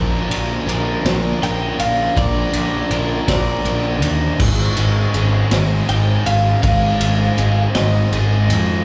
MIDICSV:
0, 0, Header, 1, 5, 480
1, 0, Start_track
1, 0, Tempo, 744509
1, 1396, Time_signature, 6, 3, 24, 8
1, 5703, End_track
2, 0, Start_track
2, 0, Title_t, "Clean electric guitar"
2, 0, Program_c, 0, 27
2, 923, Note_on_c, 0, 79, 104
2, 1157, Note_off_c, 0, 79, 0
2, 1159, Note_on_c, 0, 77, 97
2, 1381, Note_off_c, 0, 77, 0
2, 1403, Note_on_c, 0, 74, 96
2, 2112, Note_off_c, 0, 74, 0
2, 2120, Note_on_c, 0, 74, 66
2, 2633, Note_off_c, 0, 74, 0
2, 3798, Note_on_c, 0, 79, 101
2, 4035, Note_off_c, 0, 79, 0
2, 4038, Note_on_c, 0, 77, 103
2, 4263, Note_off_c, 0, 77, 0
2, 4271, Note_on_c, 0, 77, 97
2, 4993, Note_off_c, 0, 77, 0
2, 4996, Note_on_c, 0, 75, 87
2, 5511, Note_off_c, 0, 75, 0
2, 5703, End_track
3, 0, Start_track
3, 0, Title_t, "Overdriven electric guitar"
3, 0, Program_c, 1, 29
3, 0, Note_on_c, 1, 46, 89
3, 0, Note_on_c, 1, 50, 90
3, 0, Note_on_c, 1, 53, 88
3, 0, Note_on_c, 1, 58, 96
3, 0, Note_on_c, 1, 62, 100
3, 0, Note_on_c, 1, 70, 104
3, 422, Note_off_c, 1, 50, 0
3, 423, Note_off_c, 1, 46, 0
3, 425, Note_on_c, 1, 46, 90
3, 428, Note_off_c, 1, 53, 0
3, 430, Note_off_c, 1, 58, 0
3, 430, Note_on_c, 1, 50, 91
3, 430, Note_on_c, 1, 53, 80
3, 431, Note_off_c, 1, 62, 0
3, 433, Note_on_c, 1, 58, 90
3, 434, Note_off_c, 1, 70, 0
3, 434, Note_on_c, 1, 62, 94
3, 436, Note_on_c, 1, 70, 101
3, 662, Note_off_c, 1, 46, 0
3, 665, Note_off_c, 1, 50, 0
3, 667, Note_off_c, 1, 53, 0
3, 667, Note_off_c, 1, 58, 0
3, 670, Note_on_c, 1, 46, 103
3, 671, Note_off_c, 1, 62, 0
3, 672, Note_on_c, 1, 50, 99
3, 674, Note_off_c, 1, 70, 0
3, 675, Note_on_c, 1, 53, 110
3, 675, Note_on_c, 1, 58, 104
3, 679, Note_on_c, 1, 62, 107
3, 682, Note_on_c, 1, 70, 102
3, 902, Note_off_c, 1, 46, 0
3, 905, Note_off_c, 1, 53, 0
3, 906, Note_off_c, 1, 50, 0
3, 910, Note_off_c, 1, 58, 0
3, 910, Note_off_c, 1, 62, 0
3, 910, Note_on_c, 1, 46, 76
3, 912, Note_off_c, 1, 70, 0
3, 913, Note_on_c, 1, 53, 90
3, 914, Note_on_c, 1, 50, 89
3, 917, Note_on_c, 1, 58, 95
3, 918, Note_on_c, 1, 62, 90
3, 920, Note_on_c, 1, 70, 91
3, 1381, Note_off_c, 1, 46, 0
3, 1385, Note_off_c, 1, 50, 0
3, 1388, Note_off_c, 1, 53, 0
3, 1389, Note_off_c, 1, 58, 0
3, 1389, Note_on_c, 1, 46, 103
3, 1392, Note_off_c, 1, 62, 0
3, 1392, Note_on_c, 1, 50, 100
3, 1393, Note_off_c, 1, 70, 0
3, 1395, Note_on_c, 1, 53, 94
3, 1396, Note_on_c, 1, 58, 91
3, 1399, Note_on_c, 1, 62, 103
3, 1401, Note_on_c, 1, 70, 99
3, 1869, Note_off_c, 1, 46, 0
3, 1873, Note_off_c, 1, 50, 0
3, 1876, Note_off_c, 1, 53, 0
3, 1877, Note_on_c, 1, 46, 85
3, 1879, Note_off_c, 1, 58, 0
3, 1879, Note_off_c, 1, 62, 0
3, 1881, Note_off_c, 1, 70, 0
3, 1881, Note_on_c, 1, 50, 88
3, 1883, Note_on_c, 1, 53, 93
3, 1887, Note_on_c, 1, 58, 91
3, 1887, Note_on_c, 1, 62, 96
3, 1889, Note_on_c, 1, 70, 99
3, 2104, Note_off_c, 1, 46, 0
3, 2106, Note_off_c, 1, 50, 0
3, 2108, Note_off_c, 1, 53, 0
3, 2112, Note_off_c, 1, 58, 0
3, 2112, Note_on_c, 1, 46, 80
3, 2114, Note_off_c, 1, 62, 0
3, 2114, Note_on_c, 1, 50, 91
3, 2115, Note_off_c, 1, 70, 0
3, 2116, Note_on_c, 1, 53, 92
3, 2120, Note_on_c, 1, 58, 104
3, 2122, Note_on_c, 1, 62, 98
3, 2122, Note_on_c, 1, 70, 110
3, 2341, Note_off_c, 1, 46, 0
3, 2344, Note_off_c, 1, 50, 0
3, 2347, Note_off_c, 1, 53, 0
3, 2349, Note_on_c, 1, 46, 92
3, 2351, Note_off_c, 1, 58, 0
3, 2351, Note_on_c, 1, 50, 81
3, 2353, Note_off_c, 1, 70, 0
3, 2354, Note_off_c, 1, 62, 0
3, 2355, Note_on_c, 1, 53, 91
3, 2359, Note_on_c, 1, 58, 86
3, 2360, Note_on_c, 1, 70, 82
3, 2362, Note_on_c, 1, 62, 95
3, 2818, Note_off_c, 1, 46, 0
3, 2820, Note_off_c, 1, 50, 0
3, 2821, Note_off_c, 1, 53, 0
3, 2823, Note_off_c, 1, 58, 0
3, 2824, Note_off_c, 1, 70, 0
3, 2825, Note_off_c, 1, 62, 0
3, 2835, Note_on_c, 1, 44, 89
3, 2835, Note_on_c, 1, 51, 93
3, 2838, Note_on_c, 1, 56, 104
3, 2841, Note_on_c, 1, 63, 102
3, 2842, Note_on_c, 1, 60, 95
3, 2845, Note_on_c, 1, 68, 102
3, 3310, Note_off_c, 1, 51, 0
3, 3313, Note_off_c, 1, 44, 0
3, 3316, Note_on_c, 1, 44, 84
3, 3318, Note_off_c, 1, 56, 0
3, 3318, Note_on_c, 1, 51, 89
3, 3319, Note_off_c, 1, 60, 0
3, 3321, Note_on_c, 1, 56, 83
3, 3321, Note_on_c, 1, 60, 88
3, 3324, Note_off_c, 1, 63, 0
3, 3324, Note_off_c, 1, 68, 0
3, 3326, Note_on_c, 1, 63, 93
3, 3327, Note_on_c, 1, 68, 94
3, 3548, Note_off_c, 1, 44, 0
3, 3552, Note_off_c, 1, 51, 0
3, 3553, Note_off_c, 1, 56, 0
3, 3556, Note_on_c, 1, 44, 92
3, 3557, Note_off_c, 1, 60, 0
3, 3558, Note_off_c, 1, 63, 0
3, 3560, Note_on_c, 1, 51, 102
3, 3561, Note_off_c, 1, 68, 0
3, 3561, Note_on_c, 1, 56, 106
3, 3565, Note_on_c, 1, 60, 98
3, 3566, Note_on_c, 1, 63, 99
3, 3569, Note_on_c, 1, 68, 103
3, 3783, Note_off_c, 1, 44, 0
3, 3788, Note_off_c, 1, 51, 0
3, 3790, Note_off_c, 1, 56, 0
3, 3791, Note_on_c, 1, 44, 85
3, 3793, Note_off_c, 1, 60, 0
3, 3794, Note_off_c, 1, 63, 0
3, 3794, Note_off_c, 1, 68, 0
3, 3795, Note_on_c, 1, 51, 80
3, 3797, Note_on_c, 1, 56, 89
3, 3800, Note_on_c, 1, 60, 78
3, 3802, Note_on_c, 1, 63, 91
3, 3802, Note_on_c, 1, 68, 95
3, 4262, Note_off_c, 1, 44, 0
3, 4267, Note_off_c, 1, 51, 0
3, 4268, Note_off_c, 1, 56, 0
3, 4270, Note_on_c, 1, 44, 96
3, 4272, Note_off_c, 1, 60, 0
3, 4273, Note_off_c, 1, 63, 0
3, 4274, Note_on_c, 1, 51, 97
3, 4275, Note_off_c, 1, 68, 0
3, 4275, Note_on_c, 1, 56, 95
3, 4280, Note_on_c, 1, 60, 98
3, 4280, Note_on_c, 1, 63, 102
3, 4283, Note_on_c, 1, 68, 113
3, 4744, Note_off_c, 1, 44, 0
3, 4750, Note_off_c, 1, 51, 0
3, 4751, Note_off_c, 1, 56, 0
3, 4752, Note_on_c, 1, 44, 91
3, 4753, Note_off_c, 1, 60, 0
3, 4754, Note_off_c, 1, 63, 0
3, 4757, Note_off_c, 1, 68, 0
3, 4757, Note_on_c, 1, 51, 81
3, 4758, Note_on_c, 1, 56, 87
3, 4761, Note_on_c, 1, 60, 96
3, 4762, Note_on_c, 1, 63, 98
3, 4765, Note_on_c, 1, 68, 99
3, 4983, Note_off_c, 1, 44, 0
3, 4986, Note_off_c, 1, 51, 0
3, 4990, Note_off_c, 1, 56, 0
3, 4991, Note_off_c, 1, 60, 0
3, 4991, Note_on_c, 1, 44, 99
3, 4993, Note_on_c, 1, 51, 102
3, 4994, Note_off_c, 1, 63, 0
3, 4997, Note_off_c, 1, 68, 0
3, 4997, Note_on_c, 1, 56, 95
3, 4999, Note_on_c, 1, 60, 96
3, 5001, Note_on_c, 1, 63, 101
3, 5004, Note_on_c, 1, 68, 104
3, 5226, Note_off_c, 1, 44, 0
3, 5228, Note_off_c, 1, 51, 0
3, 5230, Note_off_c, 1, 56, 0
3, 5231, Note_off_c, 1, 60, 0
3, 5234, Note_on_c, 1, 44, 81
3, 5236, Note_off_c, 1, 63, 0
3, 5236, Note_on_c, 1, 51, 87
3, 5237, Note_off_c, 1, 68, 0
3, 5237, Note_on_c, 1, 56, 97
3, 5238, Note_on_c, 1, 60, 85
3, 5243, Note_on_c, 1, 63, 89
3, 5245, Note_on_c, 1, 68, 98
3, 5701, Note_off_c, 1, 44, 0
3, 5702, Note_off_c, 1, 51, 0
3, 5703, Note_off_c, 1, 56, 0
3, 5703, Note_off_c, 1, 60, 0
3, 5703, Note_off_c, 1, 63, 0
3, 5703, Note_off_c, 1, 68, 0
3, 5703, End_track
4, 0, Start_track
4, 0, Title_t, "Picked electric bass"
4, 0, Program_c, 2, 34
4, 0, Note_on_c, 2, 34, 99
4, 138, Note_off_c, 2, 34, 0
4, 191, Note_on_c, 2, 34, 93
4, 373, Note_off_c, 2, 34, 0
4, 431, Note_on_c, 2, 34, 91
4, 614, Note_off_c, 2, 34, 0
4, 676, Note_on_c, 2, 34, 98
4, 857, Note_off_c, 2, 34, 0
4, 920, Note_on_c, 2, 34, 91
4, 1099, Note_off_c, 2, 34, 0
4, 1156, Note_on_c, 2, 34, 90
4, 1337, Note_off_c, 2, 34, 0
4, 1397, Note_on_c, 2, 34, 99
4, 1578, Note_off_c, 2, 34, 0
4, 1635, Note_on_c, 2, 34, 88
4, 1816, Note_off_c, 2, 34, 0
4, 1875, Note_on_c, 2, 34, 95
4, 2056, Note_off_c, 2, 34, 0
4, 2115, Note_on_c, 2, 34, 102
4, 2296, Note_off_c, 2, 34, 0
4, 2356, Note_on_c, 2, 34, 91
4, 2595, Note_off_c, 2, 34, 0
4, 2595, Note_on_c, 2, 39, 81
4, 2776, Note_off_c, 2, 39, 0
4, 2833, Note_on_c, 2, 32, 100
4, 3015, Note_off_c, 2, 32, 0
4, 3078, Note_on_c, 2, 32, 89
4, 3258, Note_off_c, 2, 32, 0
4, 3315, Note_on_c, 2, 32, 90
4, 3496, Note_off_c, 2, 32, 0
4, 3555, Note_on_c, 2, 32, 103
4, 3737, Note_off_c, 2, 32, 0
4, 3796, Note_on_c, 2, 32, 92
4, 3977, Note_off_c, 2, 32, 0
4, 4035, Note_on_c, 2, 32, 93
4, 4216, Note_off_c, 2, 32, 0
4, 4275, Note_on_c, 2, 32, 102
4, 4457, Note_off_c, 2, 32, 0
4, 4515, Note_on_c, 2, 32, 92
4, 4697, Note_off_c, 2, 32, 0
4, 4756, Note_on_c, 2, 32, 95
4, 4937, Note_off_c, 2, 32, 0
4, 4993, Note_on_c, 2, 32, 100
4, 5176, Note_off_c, 2, 32, 0
4, 5236, Note_on_c, 2, 32, 92
4, 5473, Note_on_c, 2, 41, 88
4, 5483, Note_off_c, 2, 32, 0
4, 5656, Note_off_c, 2, 41, 0
4, 5703, End_track
5, 0, Start_track
5, 0, Title_t, "Drums"
5, 201, Note_on_c, 9, 51, 76
5, 265, Note_off_c, 9, 51, 0
5, 442, Note_on_c, 9, 51, 68
5, 506, Note_off_c, 9, 51, 0
5, 680, Note_on_c, 9, 51, 98
5, 681, Note_on_c, 9, 38, 117
5, 745, Note_off_c, 9, 38, 0
5, 745, Note_off_c, 9, 51, 0
5, 921, Note_on_c, 9, 51, 74
5, 985, Note_off_c, 9, 51, 0
5, 1157, Note_on_c, 9, 51, 73
5, 1221, Note_off_c, 9, 51, 0
5, 1397, Note_on_c, 9, 36, 112
5, 1399, Note_on_c, 9, 51, 96
5, 1462, Note_off_c, 9, 36, 0
5, 1463, Note_off_c, 9, 51, 0
5, 1634, Note_on_c, 9, 51, 75
5, 1698, Note_off_c, 9, 51, 0
5, 1873, Note_on_c, 9, 51, 69
5, 1938, Note_off_c, 9, 51, 0
5, 2116, Note_on_c, 9, 36, 80
5, 2116, Note_on_c, 9, 38, 113
5, 2116, Note_on_c, 9, 51, 102
5, 2180, Note_off_c, 9, 36, 0
5, 2180, Note_off_c, 9, 51, 0
5, 2181, Note_off_c, 9, 38, 0
5, 2354, Note_on_c, 9, 51, 76
5, 2418, Note_off_c, 9, 51, 0
5, 2592, Note_on_c, 9, 51, 76
5, 2656, Note_off_c, 9, 51, 0
5, 2834, Note_on_c, 9, 49, 105
5, 2835, Note_on_c, 9, 36, 117
5, 2898, Note_off_c, 9, 49, 0
5, 2899, Note_off_c, 9, 36, 0
5, 3072, Note_on_c, 9, 51, 82
5, 3137, Note_off_c, 9, 51, 0
5, 3313, Note_on_c, 9, 51, 73
5, 3378, Note_off_c, 9, 51, 0
5, 3554, Note_on_c, 9, 38, 114
5, 3554, Note_on_c, 9, 51, 108
5, 3618, Note_off_c, 9, 51, 0
5, 3619, Note_off_c, 9, 38, 0
5, 3795, Note_on_c, 9, 51, 75
5, 3860, Note_off_c, 9, 51, 0
5, 4037, Note_on_c, 9, 51, 73
5, 4101, Note_off_c, 9, 51, 0
5, 4273, Note_on_c, 9, 51, 104
5, 4276, Note_on_c, 9, 36, 115
5, 4338, Note_off_c, 9, 51, 0
5, 4340, Note_off_c, 9, 36, 0
5, 4516, Note_on_c, 9, 51, 81
5, 4581, Note_off_c, 9, 51, 0
5, 4755, Note_on_c, 9, 51, 65
5, 4820, Note_off_c, 9, 51, 0
5, 4995, Note_on_c, 9, 38, 115
5, 4995, Note_on_c, 9, 51, 97
5, 5059, Note_off_c, 9, 51, 0
5, 5060, Note_off_c, 9, 38, 0
5, 5238, Note_on_c, 9, 51, 70
5, 5303, Note_off_c, 9, 51, 0
5, 5479, Note_on_c, 9, 51, 71
5, 5543, Note_off_c, 9, 51, 0
5, 5703, End_track
0, 0, End_of_file